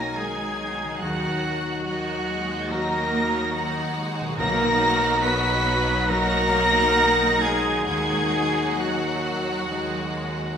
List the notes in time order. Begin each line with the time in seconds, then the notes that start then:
Already playing: B1 B2 F#3 A#3 C#4 D#4 F#4 A#4 G#5 A#5 A#6
0.14 D#3 G#3 D#4 G#4 G#5 G#6
0.84 D#3
0.88 F#3
0.93 D#4
0.98 F#4 F#5 F#6
1.02 D#2 F#3 D#4 F#4
1.44 F#4
1.85 D#3 F#3 F#4 D#5 F#5 F#6
2.28 G#3
2.69 F#3 A#3 D#4 F#4 A#4 D#5 A#5 A#6
3.13 F#3
3.55 D#3 D#4 F#4 F#5
3.98 G#3
4.21 B2
4.25 F#3
4.30 D#4
4.34 F#4
4.38 B1 B2 F#3 A#3 D#4 F#4 A#4 F#5 A#5 A#6
4.81 F#3
5.22 B3 F#4 B4 D#5 B5 B6
6.08 F#3 A#3 D#4 F#4 A#4 F#5 A#5 A#6
6.53 D#4
6.98 D#3
7.41 G#3 G#4 G#5 G#6
7.69 D#3
7.74 F#3
7.78 D#4
7.83 G#3 F#4 F#5 G#6
7.87 D#2 F#3 D#4 G#4 G#5
8.78 F#3 F#4 F#5 F#6
9.71 F#3 G#3 D#4 F#4